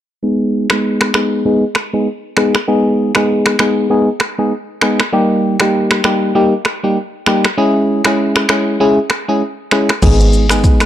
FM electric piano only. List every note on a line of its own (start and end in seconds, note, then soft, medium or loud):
0.23 0.67 G#3 medium
0.23 0.67 B3 medium
0.23 0.67 D#4 medium
0.23 0.67 G#4 medium
0.71 1.12 G#3 medium
0.71 1.12 B3 medium
0.71 1.12 D#4 medium
0.71 1.12 G#4 medium
1.15 1.43 G#3 medium
1.15 1.43 B3 medium
1.15 1.43 D#4 medium
1.15 1.44 G#4 medium
1.45 1.64 G#3 medium
1.45 1.64 B3 medium
1.45 1.64 D#4 medium
1.45 1.64 G#4 medium
1.93 2.08 G#3 medium
1.93 2.08 B3 medium
1.93 2.08 D#4 medium
1.93 2.08 G#4 medium
2.37 2.56 G#3 medium
2.37 2.56 B3 medium
2.37 2.56 D#4 medium
2.37 2.56 G#4 medium
2.68 3.12 G#3 medium
2.68 3.12 B3 medium
2.68 3.12 D#4 medium
2.68 3.12 G#4 loud
3.16 3.56 G#3 medium
3.16 3.57 B3 medium
3.16 3.57 D#4 medium
3.16 3.57 G#4 medium
3.59 3.88 G#3 medium
3.59 3.88 B3 medium
3.59 3.88 D#4 medium
3.59 3.88 G#4 medium
3.90 4.09 G#3 medium
3.90 4.09 B3 medium
3.90 4.09 D#4 medium
3.90 4.09 G#4 medium
4.38 4.53 G#3 medium
4.38 4.53 B3 medium
4.38 4.53 D#4 medium
4.38 4.53 G#4 medium
4.82 5.01 G#3 medium
4.82 5.01 B3 medium
4.82 5.01 D#4 medium
4.82 5.01 G#4 medium
5.13 5.57 G3 medium
5.13 5.57 A#3 medium
5.13 5.57 D#4 medium
5.13 5.57 G4 loud
5.61 6.01 G3 medium
5.61 6.01 A#3 medium
5.61 6.02 D#4 medium
5.61 6.02 G4 medium
6.04 6.33 G3 medium
6.04 6.33 A#3 medium
6.04 6.33 D#4 medium
6.04 6.33 G4 medium
6.35 6.54 G3 medium
6.35 6.54 A#3 medium
6.35 6.54 D#4 medium
6.35 6.54 G4 loud
6.83 6.98 G3 medium
6.83 6.98 A#3 medium
6.83 6.98 D#4 medium
6.83 6.98 G4 medium
7.27 7.46 G3 medium
7.27 7.46 A#3 medium
7.27 7.46 D#4 medium
7.27 7.46 G4 medium
7.57 8.02 G#3 medium
7.57 8.02 C#4 medium
7.57 8.02 E4 medium
7.57 8.02 G#4 loud
8.06 8.46 G#3 medium
8.06 8.46 C#4 medium
8.06 8.47 E4 medium
8.06 8.47 G#4 medium
8.49 8.78 G#3 medium
8.49 8.78 C#4 medium
8.49 8.78 E4 medium
8.49 8.78 G#4 medium
8.80 8.99 G#3 medium
8.80 8.99 C#4 medium
8.80 8.99 E4 medium
8.80 8.99 G#4 loud
9.28 9.43 G#3 medium
9.28 9.43 C#4 medium
9.28 9.43 E4 medium
9.28 9.43 G#4 medium
9.72 9.91 G#3 medium
9.72 9.91 C#4 medium
9.72 9.91 E4 medium
9.72 9.91 G#4 medium
10.02 10.46 G#3 medium
10.02 10.47 B3 medium
10.02 10.47 D#4 medium
10.02 10.47 G#4 loud
10.51 10.86 G#3 medium
10.51 10.86 B3 medium
10.51 10.86 D#4 medium
10.51 10.86 G#4 medium